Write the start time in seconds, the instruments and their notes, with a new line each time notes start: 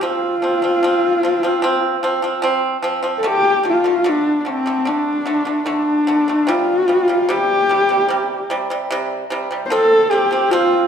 0.01 pipa F3 C4, horsehead fiddle F4
0.42 pipa F3 C4
0.62 pipa F3 C4
0.83 pipa F3 C4
1.23 pipa F3 C4
1.43 pipa F3 C4
1.62 pipa F3 C4
2.03 pipa F3 C4
2.22 pipa F3 C4
2.42 pipa F3 C4
2.83 pipa F3 C4
3.03 pipa F3 C4
3.18 horsehead fiddle A4
3.23 pipa D3 A3
3.27 horsehead fiddle G4
3.63 pipa D3 A3
3.69 horsehead fiddle F4
3.84 pipa D3 A3
4.04 pipa D3 A3
4.09 horsehead fiddle D4
4.41 horsehead fiddle D4
4.45 pipa D3 A3
4.49 horsehead fiddle C4
4.66 pipa D3 A3
4.85 pipa D3 A3, horsehead fiddle D4
5.26 pipa D3 A3
5.45 pipa D3 A3
5.66 pipa D3 A3, horsehead fiddle D4
6.07 pipa D3 A3
6.28 pipa D3 A3
6.47 pipa C3 G3, horsehead fiddle F4
6.88 pipa C3 G3
7.08 pipa C3 G3
7.29 pipa C3 G3, horsehead fiddle G4
7.69 pipa C3 G3
7.89 pipa C3 G3
8.09 pipa C3 G3
8.50 pipa C3 G3
8.70 pipa C3 G3
8.91 pipa C3 G3
9.30 pipa C3 G3
9.51 pipa C3 G3
9.66 horsehead fiddle C5
9.70 pipa F3 C4, horsehead fiddle A4
10.11 pipa F3 C4, horsehead fiddle G4
10.31 pipa F3 C4
10.51 pipa F3 C4, horsehead fiddle F4